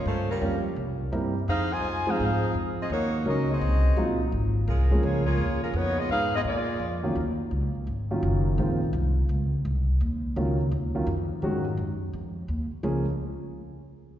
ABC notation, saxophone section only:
X:1
M:4/4
L:1/8
Q:"Swing" 1/4=169
K:Db
V:1 name="Saxophone section"
[=A,DFc] [=G,DFB]2 z4 z | [EAcf] [Fcea]2 [EAcf]3 z [CFAe] | [B,EGd]2 [DGBe] [CGAe]4 z | z2 [A,DFB]2 [B,FAd] [B,FAd]2 [A,DFB] |
[_CEGd] [CFAe] [EA_cf] [CFAe] [B,FA=d]3 z | z8 | z8 | z8 |
z8 | z8 |]